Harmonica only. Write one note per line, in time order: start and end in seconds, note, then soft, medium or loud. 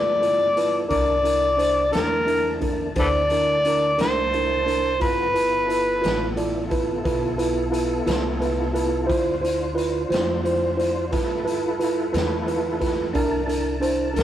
0.00 0.85 D5 medium
0.91 1.89 D5 medium
1.93 2.57 A#4 medium
3.00 3.07 A4 medium
3.00 3.08 B4 medium
3.00 3.96 D5 loud
4.01 4.98 C5 medium
5.01 6.33 B4 medium
14.17 14.23 A#4 medium